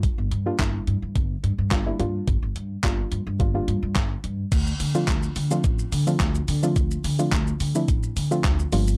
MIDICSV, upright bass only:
0, 0, Header, 1, 2, 480
1, 0, Start_track
1, 0, Key_signature, -1, "minor"
1, 0, Tempo, 560748
1, 28, Time_signature, 4, 2, 24, 8
1, 7678, End_track
2, 0, Start_track
2, 0, Title_t, "Upright bass"
2, 0, Program_c, 0, 32
2, 155, Note_on_c, 0, 31, 97
2, 228, Note_off_c, 0, 31, 0
2, 268, Note_on_c, 0, 43, 92
2, 424, Note_off_c, 0, 43, 0
2, 507, Note_on_c, 0, 31, 103
2, 663, Note_off_c, 0, 31, 0
2, 748, Note_on_c, 0, 43, 97
2, 830, Note_off_c, 0, 43, 0
2, 876, Note_on_c, 0, 43, 91
2, 949, Note_off_c, 0, 43, 0
2, 989, Note_on_c, 0, 31, 98
2, 1145, Note_off_c, 0, 31, 0
2, 1229, Note_on_c, 0, 43, 103
2, 1311, Note_off_c, 0, 43, 0
2, 1356, Note_on_c, 0, 43, 97
2, 1429, Note_off_c, 0, 43, 0
2, 1467, Note_on_c, 0, 31, 94
2, 1623, Note_off_c, 0, 31, 0
2, 1709, Note_on_c, 0, 43, 98
2, 1865, Note_off_c, 0, 43, 0
2, 1948, Note_on_c, 0, 31, 118
2, 2031, Note_off_c, 0, 31, 0
2, 2076, Note_on_c, 0, 31, 99
2, 2149, Note_off_c, 0, 31, 0
2, 2189, Note_on_c, 0, 43, 91
2, 2344, Note_off_c, 0, 43, 0
2, 2427, Note_on_c, 0, 31, 96
2, 2583, Note_off_c, 0, 31, 0
2, 2669, Note_on_c, 0, 43, 90
2, 2751, Note_off_c, 0, 43, 0
2, 2796, Note_on_c, 0, 43, 93
2, 2869, Note_off_c, 0, 43, 0
2, 2909, Note_on_c, 0, 31, 100
2, 3065, Note_off_c, 0, 31, 0
2, 3148, Note_on_c, 0, 43, 101
2, 3231, Note_off_c, 0, 43, 0
2, 3275, Note_on_c, 0, 43, 99
2, 3348, Note_off_c, 0, 43, 0
2, 3387, Note_on_c, 0, 31, 97
2, 3543, Note_off_c, 0, 31, 0
2, 3628, Note_on_c, 0, 43, 98
2, 3784, Note_off_c, 0, 43, 0
2, 3868, Note_on_c, 0, 38, 110
2, 4024, Note_off_c, 0, 38, 0
2, 4108, Note_on_c, 0, 50, 100
2, 4264, Note_off_c, 0, 50, 0
2, 4347, Note_on_c, 0, 38, 101
2, 4503, Note_off_c, 0, 38, 0
2, 4588, Note_on_c, 0, 50, 99
2, 4744, Note_off_c, 0, 50, 0
2, 4829, Note_on_c, 0, 33, 96
2, 4985, Note_off_c, 0, 33, 0
2, 5068, Note_on_c, 0, 50, 102
2, 5224, Note_off_c, 0, 50, 0
2, 5308, Note_on_c, 0, 38, 97
2, 5464, Note_off_c, 0, 38, 0
2, 5548, Note_on_c, 0, 50, 102
2, 5704, Note_off_c, 0, 50, 0
2, 5788, Note_on_c, 0, 38, 107
2, 5944, Note_off_c, 0, 38, 0
2, 6028, Note_on_c, 0, 50, 102
2, 6184, Note_off_c, 0, 50, 0
2, 6267, Note_on_c, 0, 38, 108
2, 6423, Note_off_c, 0, 38, 0
2, 6508, Note_on_c, 0, 50, 97
2, 6664, Note_off_c, 0, 50, 0
2, 6749, Note_on_c, 0, 33, 94
2, 6905, Note_off_c, 0, 33, 0
2, 6988, Note_on_c, 0, 50, 93
2, 7144, Note_off_c, 0, 50, 0
2, 7227, Note_on_c, 0, 38, 103
2, 7383, Note_off_c, 0, 38, 0
2, 7468, Note_on_c, 0, 31, 105
2, 7678, Note_off_c, 0, 31, 0
2, 7678, End_track
0, 0, End_of_file